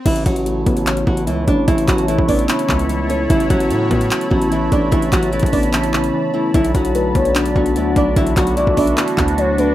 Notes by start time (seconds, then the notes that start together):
0.06 A1 C#3 E3 E4 C#5 A5 B5, kick, closed hi-hat, crash
0.16 closed hi-hat
0.26 A1 E3 F#3 F#4, kick, closed hi-hat
0.36 closed hi-hat
0.46 A3, closed hi-hat
0.66 A1 B3, kick, closed hi-hat
0.77 closed hi-hat
0.87 C#4, clap, closed hi-hat
0.97 closed hi-hat
1.07 A1 C#3 F#3 F#4, kick
1.17 closed hi-hat
1.27 C#2 E3 E4, closed hi-hat
1.47 A1 A3 D4 D5, kick, closed hi-hat
1.68 A1 C#3 E3 E4, kick, closed hi-hat
1.78 closed hi-hat
1.88 A1 E3 F#3 F#4, kick, clap, closed hi-hat
1.98 closed hi-hat
2.08 E3 A3 E4, closed hi-hat
2.19 A1, kick
2.28 B3 D4 D5, kick, open hi-hat
2.39 closed hi-hat
2.48 E3 C#4 E4, clap, closed hi-hat
2.59 closed hi-hat
2.69 C#2 C#3, kick, clap
2.79 closed hi-hat
2.89 E3, closed hi-hat
3.09 A3 C#4 C#5, closed hi-hat
3.30 A1 C#3 E3 E4, kick, closed hi-hat
3.40 closed hi-hat
3.50 A1 E3 F#3 F#4, kick, closed hi-hat
3.60 closed hi-hat
3.71 A2 A3, closed hi-hat
3.91 A2 B3, kick, closed hi-hat
4.01 closed hi-hat
4.11 C#4, clap, closed hi-hat
4.21 closed hi-hat
4.30 A1 C#3 F#3 F#4, kick
4.42 closed hi-hat
4.51 E3 E4, closed hi-hat
4.72 A1 A3 D4 D5, kick, closed hi-hat
4.92 A1 C#3 E3 E4, kick, closed hi-hat
5.02 closed hi-hat
5.12 A1 E3 F#3 F#4, kick, clap, closed hi-hat
5.23 closed hi-hat
5.32 E3 A3 E4, closed hi-hat
5.39 A1, kick, closed hi-hat
5.46 closed hi-hat
5.52 B3 D4 D5, kick, open hi-hat
5.63 closed hi-hat
5.73 E3 C#4 E4, clap, closed hi-hat
5.83 closed hi-hat
5.93 C#3, clap
6.04 closed hi-hat
6.14 E3
6.34 E3 A3 E4
6.54 B1 D3 E3 D4 E4 F#4, kick, closed hi-hat
6.64 closed hi-hat
6.74 B1 F#3 F#4, kick, closed hi-hat
6.85 closed hi-hat
6.95 A3 B4, closed hi-hat
7.15 B1 B3 C#5, kick, closed hi-hat
7.25 closed hi-hat
7.35 D4, clap, closed hi-hat
7.46 closed hi-hat
7.56 B1 D3 F#3 F#4, kick
7.66 closed hi-hat
7.76 D2 E3 F#3 E4, closed hi-hat
7.96 B1 A3 D4 D5, kick, closed hi-hat
8.16 B1 D3 E3 E4, kick, closed hi-hat
8.27 closed hi-hat
8.37 B1 F#3 F#4, kick, clap, closed hi-hat
8.47 closed hi-hat
8.57 E3 A3 E4 D5, closed hi-hat
8.67 B1, kick
8.77 B3 D4 D5 E5, kick, open hi-hat
8.87 closed hi-hat
8.97 E3 D4 E4, clap, closed hi-hat
9.08 closed hi-hat
9.18 D2 D3, kick, clap
9.28 closed hi-hat
9.38 F#3 C#5, closed hi-hat
9.58 A3 D4 B4 D5, closed hi-hat